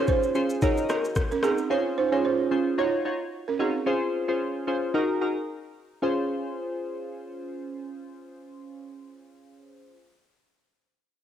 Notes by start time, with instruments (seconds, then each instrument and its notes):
Already playing: synth keys C#4 F4 G#4 C5
0.08 balafon F4 C5, kick, shaker
0.23 shaker
0.35 synth keys C#4 F4 G#4 C5, shaker
0.50 shaker
0.62 synth keys D#4 F#4 G#4 A#4, balafon F#4 C#5, kick, shaker
0.77 shaker
0.89 synth keys D#4 F#4 G#4 A#4, cross-stick, shaker
1.05 shaker
1.16 kick, cross-stick, shaker
1.31 balafon C#4 A#4, shaker
1.43 balafon C4 G#4, synth keys D#4 F#4 G#4 A#4, cross-stick, shaker
1.58 shaker
1.70 synth keys C#4 F4 G#4 C5, balafon F4 C#5
1.98 balafon D#4 C5
2.12 synth keys C#4 F4 G#4 C5, balafon F4 C#5
2.25 balafon F4 C5
2.51 synth keys C#4 F4 G#4 C5
2.78 synth keys D#4 F4 F#4 C#5, balafon F4 C#5
3.05 synth keys D#4 F4 F#4 C#5
3.48 balafon C#4 A#4
3.59 balafon C4 G#4, synth keys D#4 F4 F#4 C#5
3.86 synth keys C#4 F4 G#4 C5
4.28 synth keys C#4 F4 G#4 C5
4.67 synth keys C#4 F4 G#4 C5
4.94 synth keys D#4 F#4 G#4 A#4
5.21 synth keys D#4 F#4 G#4 A#4
6.02 synth keys C#4 F4 G#4 C5